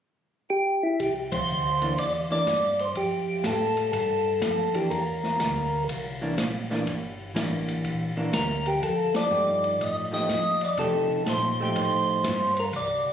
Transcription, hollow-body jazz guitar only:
1.82 1.96 E3 medium
1.82 1.96 A#3 medium
1.82 1.97 D4 medium
2.30 2.45 E3 medium
2.30 2.45 A#3 medium
2.30 2.45 D4 medium
4.74 4.89 E3 medium
4.74 4.89 A#3 medium
4.74 4.89 D4 medium
6.21 6.36 E3 medium
6.21 6.36 A#3 medium
6.21 6.37 D4 medium
6.70 6.85 E3 medium
6.70 6.85 A#3 medium
6.70 6.85 D4 medium
7.35 8.10 E3 medium
7.35 8.10 A#3 soft
7.35 8.10 D4 medium
8.17 8.31 E3 medium
8.17 8.32 A#3 medium
8.17 8.32 D4 medium
9.31 10.05 F3 medium
9.31 10.06 A3 medium
9.31 10.06 D#4 medium
9.31 10.06 G4 medium
10.11 10.27 F3 medium
10.11 10.27 A3 medium
10.11 10.27 D#4 medium
10.11 10.27 G4 medium
10.78 11.53 F3 medium
10.78 11.53 A3 medium
10.78 11.53 D#4 medium
10.78 11.53 G4 medium
11.60 12.22 F3 medium
11.60 12.22 A3 medium
11.60 12.22 D#4 medium
11.60 12.23 G4 medium

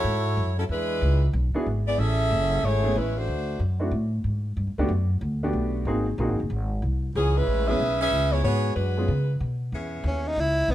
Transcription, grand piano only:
1.54 1.65 B3 medium
1.54 1.65 D4 medium
1.54 1.66 E4 medium
1.54 1.66 F#4 medium
1.54 1.66 G#4 medium
2.83 2.94 A3 medium
2.83 2.95 B3 medium
2.83 2.94 C#4 medium
2.83 2.95 E4 medium
2.83 2.95 G#4 medium
3.79 3.91 A3 medium
3.79 3.91 C4 medium
3.79 3.91 D4 medium
3.79 3.91 E4 medium
3.79 3.91 F#4 medium
4.78 4.89 A3 medium
4.78 4.89 B3 medium
4.78 4.89 D4 medium
4.78 4.89 F#4 medium
4.78 4.89 G4 medium
5.43 5.84 A3 medium
5.43 5.85 B3 medium
5.43 5.84 D4 medium
5.43 5.85 F#4 medium
5.43 5.85 G4 medium
5.87 6.05 A#3 medium
5.87 6.05 C4 medium
5.87 6.05 D#4 medium
5.87 6.05 F#4 medium
5.87 6.05 G#4 medium
6.19 6.37 A#3 medium
6.19 6.37 C4 medium
6.19 6.37 D#4 medium
6.19 6.38 F#4 medium
6.19 6.38 G#4 medium
7.68 7.79 G#3 medium
7.68 7.79 B3 medium
7.68 7.79 C#4 medium
7.68 7.79 E4 medium
7.68 7.79 G#4 medium
8.97 9.08 G#3 medium
8.97 9.08 B3 medium
8.97 9.08 C#4 medium
8.97 9.09 F4 soft
8.97 9.09 G#4 medium

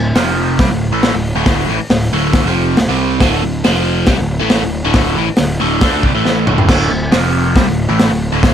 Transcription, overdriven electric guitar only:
0.00 0.11 D2 medium
0.00 0.11 A2 medium
0.16 0.59 F2 medium
0.16 0.59 C3 loud
0.16 0.59 F3 loud
0.60 0.70 C3 medium
0.60 0.70 G3 loud
0.71 0.88 D2 medium
0.71 0.88 A2 medium
0.93 1.13 A2 medium
0.93 1.14 E3 loud
0.93 1.14 A3 loud
1.14 1.31 D2 medium
1.14 1.32 A2 medium
1.36 1.68 D2 medium
1.36 1.68 A2 medium
1.36 1.68 D3 loud
1.69 1.79 A2 medium
1.69 1.79 E3 medium
1.81 muted overdriven electric guitar stroke medium
1.91 2.08 D2 medium
1.91 2.08 A2 medium
2.13 2.45 D2 loud
2.13 2.45 A2 medium
2.13 2.45 D3 loud
2.46 2.78 F2 medium
2.46 2.78 C3 medium
2.46 2.78 F3 loud
2.78 2.89 D2 medium
2.78 2.89 A2 medium
2.89 3.21 C3 medium
2.89 3.21 G3 medium
2.89 3.21 C4 loud
3.21 3.42 D2 loud
3.21 3.42 A2 loud
3.21 3.43 D3 loud
3.43 3.60 D2 medium
3.43 3.61 A2 medium
3.64 4.07 F2 loud
3.64 4.07 C3 loud
3.64 4.08 F3 loud
4.08 4.18 C3 loud
4.08 4.19 G3 loud
4.19 4.37 D2 medium
4.19 4.37 A2 medium
4.40 4.62 A2 loud
4.40 4.62 E3 medium
4.40 4.62 A3 medium
4.63 4.80 D2 medium
4.63 4.81 A2 medium
4.84 5.16 D2 loud
4.84 5.15 A2 loud
4.84 5.17 D3 loud
5.17 5.27 A2 medium
5.17 5.28 E3 loud
5.28 muted overdriven electric guitar stroke medium
5.39 5.56 D2 medium
5.39 5.56 A2 medium
5.60 5.82 D2 medium
5.60 5.82 A2 loud
5.60 5.81 D3 loud
5.82 6.03 D3 medium
5.82 6.04 A3 loud
5.82 6.04 D4 loud
6.04 6.14 C3 medium
6.04 6.14 G3 medium
6.14 6.45 A2 medium
6.14 6.47 E3 medium
6.14 6.47 A3 loud
6.46 6.67 D2 medium
6.46 6.68 A2 medium
6.46 6.69 D3 medium
6.69 6.89 D2 medium
6.69 6.90 A2 loud
6.69 6.91 D3 loud
6.91 7.08 D2 medium
6.91 7.09 A2 medium
7.12 7.55 F2 loud
7.12 7.55 C3 loud
7.12 7.56 F3 loud
7.56 7.67 C3 loud
7.56 7.67 G3 loud
7.68 7.85 D2 medium
7.68 7.85 A2 medium
7.89 8.10 A2 loud
7.89 8.10 E3 loud
7.89 8.11 A3 loud
8.10 8.28 D2 medium
8.10 8.28 A2 medium
8.32 8.54 D2 medium
8.32 8.54 A2 loud
8.32 8.54 D3 loud

